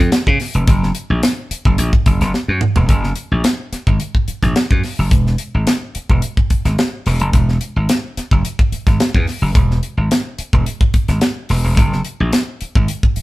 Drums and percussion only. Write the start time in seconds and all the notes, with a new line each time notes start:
0.12 snare, closed hi-hat
0.27 kick
0.40 snare, open hi-hat
0.54 closed hi-hat
0.67 kick, closed hi-hat
0.83 snare
0.95 closed hi-hat
1.23 snare, closed hi-hat
1.51 closed hi-hat
1.65 kick
1.78 closed hi-hat
1.93 kick
2.06 kick, closed hi-hat
2.21 snare, closed hi-hat
2.34 snare
2.61 mid tom
2.76 floor tom
2.89 kick, closed hi-hat
3.04 snare
3.16 closed hi-hat
3.44 snare, closed hi-hat
3.73 snare, closed hi-hat
3.87 kick
4.00 closed hi-hat
4.15 kick
4.28 closed hi-hat
4.43 kick, snare, closed hi-hat
4.56 snare, closed hi-hat
4.71 kick
4.83 snare, open hi-hat
5.11 kick, closed hi-hat
5.27 snare
5.38 closed hi-hat
5.67 snare, closed hi-hat
5.95 closed hi-hat
6.10 kick
6.22 closed hi-hat
6.37 kick
6.50 kick, closed hi-hat
6.65 snare, closed hi-hat
6.79 snare, closed hi-hat
7.06 snare, open hi-hat
7.20 closed hi-hat
7.33 kick, closed hi-hat
7.49 snare
7.61 closed hi-hat
7.89 snare, closed hi-hat
8.17 snare, closed hi-hat
8.31 kick
8.45 closed hi-hat
8.59 kick
8.72 closed hi-hat
8.87 kick, snare, closed hi-hat
9.00 snare, closed hi-hat
9.14 kick
9.27 snare, open hi-hat
9.55 kick, closed hi-hat
9.71 snare
9.83 closed hi-hat
10.11 snare, closed hi-hat
10.38 closed hi-hat
10.53 kick
10.66 closed hi-hat
10.81 kick
10.94 kick, closed hi-hat
11.08 snare, closed hi-hat
11.21 snare, closed hi-hat
11.49 snare, open hi-hat
11.77 kick, closed hi-hat
11.93 snare
12.05 closed hi-hat
12.33 snare, closed hi-hat
12.61 closed hi-hat
12.75 kick
12.88 closed hi-hat
13.03 kick
13.16 closed hi-hat